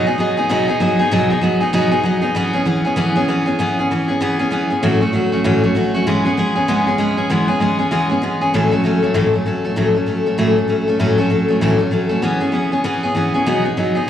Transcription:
0.07 B3 D#4 G#4
0.18 F#3 B3 D#4 G#4
0.37 B3 D#4 G#4
0.49 B2 F#3 B3 D#4 G#4
0.68 B3 D#4 G#4
0.80 F#3 B3 D#4 G#4
0.99 B3 D#4 G#4
1.11 B2 F#3 B3 D#4 G#4
1.30 B3 D#4 G#4
1.41 F#3 B3 D#4 G#4
1.60 B3 D#4 G#4
1.73 B2 F#3 B3 D#4 G#4
1.91 B3 D#4 G#4
2.03 F#3 B3 D#4 G#4
2.22 B3 D#4 G#4
2.35 E3 B3 C#4 G#4
2.53 B3 C#4 G#4
2.65 E3 B3 C#4 G#4
2.85 B3 C#4 G#4
2.96 E3 B3 C#4 G#4
3.16 B3 C#4 G#4
3.28 E3 B3 C#4 G#4
3.46 B3 C#4 G#4
3.59 E3 B3 C#4 G#4
3.79 B3 C#4 G#4
3.91 E3 B3 C#4 G#4
4.08 B3 C#4 G#4
4.21 E3 B3 C#4 G#4
4.39 B3 C#4 G#4
4.51 E3 B3 C#4 G#4
4.70 B3 C#4 G#4
4.83 A2 E3 F#3 A3 C#4 F#4
5.01 F#3 A3 C#4 F#4
5.13 F#3 A3 C#4 F#4
5.32 F#3 A3 C#4 F#4
5.44 A2 E3 F#3 A3 C#4 F#4
5.63 F#3 A3 C#4 F#4
5.75 F#3 A3 C#4 F#4
5.94 F#3 A3 C#4 F#4
6.07 E3 G#3 B3 C#4 G#4
6.25 B3 C#4 G#4
6.37 G#3 B3 C#4 G#4
6.56 B3 C#4 G#4
6.68 E3 G#3 B3 C#4 G#4
6.87 B3 C#4 G#4
6.98 G#3 B3 C#4 G#4
7.17 B3 C#4 G#4
7.30 E3 G#3 B3 C#4 G#4
7.48 B3 C#4 G#4
7.60 G#3 B3 C#4 G#4
7.79 B3 C#4 G#4
7.91 E3 G#3 B3 C#4 G#4
8.09 B3 C#4 G#4
8.22 G#3 B3 C#4 G#4
8.41 B3 C#4 G#4
8.54 A2 E3 F#3 A3 C#4 A4
8.72 F#3 A3 C#4 A4
8.84 F#3 A3 C#4 A4
9.02 F#3 A3 C#4 A4
9.14 A2 E3 F#3 A3 C#4 A4
9.34 F#3 A3 C#4 A4
9.46 F#3 A3 C#4 A4
9.64 F#3 A3 C#4 A4
9.76 A2 E3 F#3 A3 C#4 A4
9.95 F#3 A3 C#4 A4
10.06 F#3 A3 C#4 A4
10.26 F#3 A3 C#4 A4
10.38 A2 E3 F#3 A3 C#4 A4
10.56 F#3 A3 C#4 A4
10.68 F#3 A3 C#4 A4
10.88 F#3 A3 C#4 A4
10.99 A2 E3 F#3 A3 C#4 A4
11.18 F#3 A3 C#4 A4
11.30 F#3 A3 C#4 A4
11.48 F#3 A3 C#4 A4
11.61 A2 E3 F#3 A3 C#4 A4
11.79 F#3 A3 C#4 A4
11.91 F#3 A3 C#4 A4
12.09 F#3 A3 C#4 A4
12.22 E3 B3 C#4 G#4
12.40 B3 C#4 G#4
12.52 E3 B3 C#4 G#4
12.72 B3 C#4 G#4
12.84 E3 B3 C#4 G#4
13.03 B3 C#4 G#4
13.15 E3 B3 C#4 G#4
13.34 B3 C#4 G#4
13.46 B2 F#3 B3 D#4 G#4
13.64 B3 D#4 G#4
13.77 F#3 B3 D#4 G#4
13.95 B3 D#4 G#4

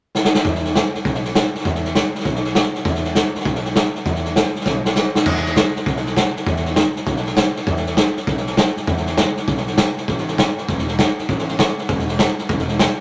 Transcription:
0.15 snare
0.25 snare
0.34 snare
0.45 E2, kick, snare
0.55 snare
0.64 snare
0.75 snare, hi-hat pedal
0.94 muted upright bass stroke, snare
1.05 B1, kick, snare
1.15 snare
1.25 snare
1.35 snare, hi-hat pedal
1.55 muted upright bass stroke, snare
1.60 snare
1.65 E2, kick, snare
1.75 snare
1.85 snare
1.95 snare, hi-hat pedal
2.15 muted upright bass stroke, snare
2.20 snare
2.25 B1, kick, snare
2.35 snare
2.44 snare
2.55 snare, hi-hat pedal
2.75 muted upright bass stroke, snare
2.85 E2, kick, snare
2.95 snare
3.04 snare
3.15 snare, hi-hat pedal
3.35 muted upright bass stroke, snare
3.40 snare
3.45 B1, kick, snare
3.55 snare
3.65 snare
3.75 snare, hi-hat pedal
3.95 muted upright bass stroke, snare
4.05 E2, kick, snare
4.15 snare
4.25 snare
4.36 snare, hi-hat pedal
4.55 muted upright bass stroke, snare
4.61 snare
4.66 B1, kick, snare
4.85 snare
4.96 snare, hi-hat pedal
5.15 muted upright bass stroke, snare
5.26 E2, kick, snare, crash
5.36 snare
5.46 snare
5.56 kick, snare, hi-hat pedal
5.76 muted upright bass stroke, snare
5.86 B1, kick, snare
5.96 snare
6.06 snare
6.16 kick, snare, hi-hat pedal
6.36 muted upright bass stroke, snare
6.46 E2, kick, snare
6.56 snare
6.66 snare
6.76 kick, snare, hi-hat pedal
6.96 muted upright bass stroke, snare
7.06 B1, kick, snare
7.16 snare
7.26 snare
7.36 kick, snare, hi-hat pedal
7.56 muted upright bass stroke, snare
7.67 E2, kick, snare
7.77 snare
7.86 snare
7.97 kick, snare, hi-hat pedal
8.16 muted upright bass stroke, snare
8.27 B1, kick, snare
8.37 snare
8.47 snare
8.57 kick, snare, hi-hat pedal
8.77 muted upright bass stroke, snare
8.87 E2, kick, snare
8.97 snare
9.06 snare
9.17 kick, snare, hi-hat pedal
9.37 muted upright bass stroke, snare
9.47 B1, kick, snare
9.57 snare
9.67 snare
9.77 kick, snare, hi-hat pedal
9.97 muted upright bass stroke, snare
10.08 A1, kick, snare
10.18 snare
10.28 snare
10.38 kick, snare, hi-hat pedal
10.58 muted upright bass stroke, snare
10.68 E1, kick, snare
10.78 snare
10.88 snare
10.99 kick, snare, hi-hat pedal
11.18 muted upright bass stroke, snare
11.29 A1, kick, snare
11.39 snare
11.48 snare
11.59 kick, snare, hi-hat pedal
11.78 muted upright bass stroke, snare
11.89 E1, kick, snare
11.99 snare
12.08 snare
12.19 kick, snare, hi-hat pedal
12.38 muted upright bass stroke, snare
12.49 E1, kick, snare
12.59 snare
12.68 snare
12.79 kick, snare, hi-hat pedal

